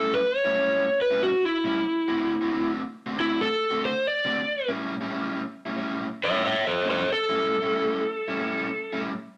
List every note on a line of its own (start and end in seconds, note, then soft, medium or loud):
0.00 0.18 A2 medium
0.00 0.18 G3 medium
0.00 0.18 C#4 medium
0.00 0.19 E4 medium
0.00 0.13 A4 medium
0.14 0.36 B4 medium
0.36 0.98 C#5 medium
0.45 0.55 A2 medium
0.45 0.56 G3 medium
0.45 0.56 C#4 medium
0.45 0.56 E4 medium
0.56 0.84 A2 medium
0.56 0.84 G3 medium
0.56 0.84 C#4 medium
0.56 0.85 E4 medium
1.01 1.21 B4 medium
1.11 1.28 A2 medium
1.11 1.28 G3 medium
1.11 1.28 C#4 medium
1.11 1.28 E4 medium
1.23 1.43 F#4 medium
1.45 2.71 E4 medium
1.64 1.79 A2 medium
1.64 1.79 G3 medium
1.64 1.79 C#4 medium
1.64 1.79 E4 medium
2.08 2.33 D3 medium
2.08 2.34 A3 medium
2.08 2.33 C4 medium
2.08 2.33 F#4 medium
2.41 2.51 D3 medium
2.41 2.51 A3 medium
2.41 2.52 C4 medium
2.41 2.52 F#4 medium
2.52 2.80 D3 medium
2.52 2.80 A3 medium
2.52 2.80 C4 medium
2.52 2.80 F#4 medium
3.06 3.15 D3 medium
3.06 3.15 A3 medium
3.06 3.16 C4 medium
3.06 3.17 F#4 medium
3.16 3.45 D3 medium
3.16 3.45 A3 medium
3.16 3.45 C4 medium
3.16 3.40 E4 medium
3.16 3.46 F#4 medium
3.41 3.82 A4 medium
3.71 3.89 D3 medium
3.71 3.89 A3 medium
3.71 3.89 C4 medium
3.71 3.88 F#4 medium
3.85 4.05 C5 medium
4.07 4.69 D5 medium
4.25 4.39 D3 medium
4.25 4.40 A3 medium
4.25 4.40 C4 medium
4.25 4.40 F#4 medium
4.69 4.94 A2 medium
4.69 4.94 G3 medium
4.69 4.94 C#4 medium
4.69 4.94 E4 medium
5.01 5.10 A2 medium
5.01 5.11 G3 medium
5.01 5.11 C#4 medium
5.01 5.11 E4 medium
5.11 5.40 A2 medium
5.11 5.40 G3 medium
5.11 5.40 C#4 medium
5.11 5.41 E4 medium
5.66 5.75 A2 medium
5.66 5.75 G3 medium
5.66 5.76 C#4 medium
5.66 5.76 E4 medium
5.76 6.05 A2 medium
5.76 6.05 G3 medium
5.76 6.06 C#4 medium
5.76 6.06 E4 medium
6.24 6.44 C#5 medium
6.24 6.44 E5 medium
6.31 6.50 A2 medium
6.31 6.50 G3 medium
6.31 6.50 C#4 medium
6.31 6.49 E4 loud
6.46 6.65 C#5 medium
6.46 6.66 E5 medium
6.67 6.86 A4 medium
6.67 6.87 C5 medium
6.85 7.00 A2 medium
6.85 7.00 G3 medium
6.85 7.01 C#4 medium
6.85 7.01 E4 medium
6.90 7.09 A4 medium
6.90 7.10 C5 medium
7.12 9.02 A4 medium
7.29 7.55 A2 medium
7.29 7.55 G3 medium
7.29 7.55 C#4 medium
7.29 7.55 E4 loud
7.62 7.72 A2 medium
7.62 7.73 G3 medium
7.62 7.73 C#4 medium
7.62 7.73 E4 medium
7.73 8.02 A2 medium
7.73 8.02 G3 medium
7.73 8.02 C#4 medium
7.73 8.02 E4 medium
8.28 8.38 A2 medium
8.28 8.38 G3 medium
8.28 8.38 C#4 medium
8.28 8.39 E4 medium
8.39 8.67 A2 medium
8.39 8.67 G3 medium
8.39 8.67 C#4 medium
8.39 8.67 E4 medium
8.93 9.11 A2 medium
8.93 9.11 G3 medium
8.93 9.11 C#4 medium
8.93 9.10 E4 medium